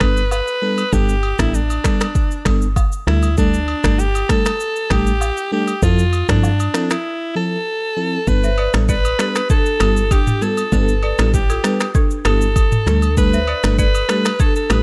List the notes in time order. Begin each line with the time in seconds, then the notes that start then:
Already playing: B4
0.00 G1 G3 B3 D4 A4, finger snap, kick, cross-stick, high agogo
0.17 shaker
0.31 B4, high agogo, low woodblock, shaker
0.47 shaker
0.62 G3 B3 D4 A4
0.78 high agogo, shaker
0.93 G1 G3 B3 D4 G4 A4, kick, shaker
1.09 shaker
1.23 high agogo
1.39 A1 G3 B3 D4 E4 A4, finger snap, kick, cross-stick, shaker
1.54 D4, shaker
1.70 high agogo, shaker
1.84 G3 B3 D4 A4, finger snap, kick, cross-stick, shaker
2.01 finger snap, cross-stick, high agogo, shaker
2.15 kick, shaker
2.31 shaker
2.45 G1 G3 B3 D4 A4, finger snap, kick, cross-stick, high agogo
2.62 shaker
2.76 kick, high agogo, low woodblock, shaker
2.92 shaker
3.07 D2 G3 A3 D4 E4 A4, finger snap, cross-stick
3.23 high agogo, shaker
3.37 G3 A3 D4 A4, kick, shaker
3.54 shaker
3.68 high agogo
3.84 G1 G3 A3 D4 A4, finger snap, kick, cross-stick, shaker
3.99 G4, shaker
4.15 high agogo, shaker
4.29 G3 A3 D4 A4, finger snap, kick, cross-stick, shaker
4.45 finger snap, cross-stick, high agogo, shaker
4.60 shaker
4.76 shaker
4.90 A1 G3 A3 D4 G4 A4, finger snap, kick, cross-stick, high agogo
5.07 shaker
5.21 high agogo, low woodblock, shaker
5.37 shaker
5.52 G3 A3 D4 G4 A4
5.68 high agogo, shaker
5.82 F2 F3 C4 E4 F4 A4, kick, shaker
5.99 shaker
6.13 high agogo, shaker
6.29 G2 F3 C4 D4 E4 A4, finger snap, kick, cross-stick, shaker
6.43 low woodblock, shaker
6.60 high agogo, shaker
6.74 F3 C4 E4 A4, finger snap, cross-stick, shaker
6.90 E4, finger snap, cross-stick, high agogo, shaker
7.35 F3 C4 E4 A4
7.97 F3 C4 E4 A4
8.27 G1 G3 B3 D4 A4 B4, kick, shaker
8.43 C5 E5, shaker
8.58 B4 D5, high agogo
8.73 A1 G3 B3 D4 A4, finger snap, cross-stick, shaker
8.89 B4 D5, kick, shaker
9.05 high agogo, shaker
9.19 G3 B3 D4 G4 A4 B4, finger snap, cross-stick, shaker
9.35 finger snap, cross-stick, high agogo, shaker
9.50 D4 A4, kick, shaker
9.66 shaker
9.80 G1 G3 B3 D4 E4 G4 A4, finger snap, cross-stick, high agogo, shaker
9.97 shaker
10.11 D4 G4, kick, high agogo, shaker
10.27 mid tom, shaker
10.41 G3 B3 D4 F4 A4, shaker
10.57 high agogo, shaker
10.72 G1 G3 B3 D4 G4 A4 B4, kick, shaker
10.88 shaker
11.03 A4 B4 D5, high agogo
11.18 A1 G3 B3 D4 E4 G4 A4, finger snap, cross-stick, shaker
11.34 G4, kick, shaker
11.50 F4 A4, high agogo, shaker
11.64 G3 B3 D4 G4 A4 B4, finger snap, cross-stick, shaker
11.80 finger snap, cross-stick, high agogo, shaker
11.95 D4 A4, kick, shaker
12.11 shaker
12.25 G1 G3 B3 D4 E4 G4 A4, finger snap, cross-stick, high agogo, shaker
12.41 shaker
12.56 kick, high agogo, shaker
12.72 mid tom, shaker
12.86 D2 G3 A3 D4 A4, finger snap, cross-stick, shaker
13.02 high agogo, shaker
13.17 G3 A3 D4 A4 B4, kick, shaker
13.33 C5 E5, shaker
13.47 B4 D5, high agogo
13.63 G1 G3 A3 D4 A4, finger snap, cross-stick, shaker
13.79 A4 B4 D5, kick, shaker
13.95 high agogo, shaker
14.09 G3 A3 D4 G4 A4 B4, finger snap, cross-stick, shaker
14.25 finger snap, cross-stick, high agogo, shaker
14.40 D4 A4, kick, shaker
14.56 A4, shaker
14.70 A1 G3 A3 D4 E4 G4 A4 B4, finger snap, cross-stick, high agogo, shaker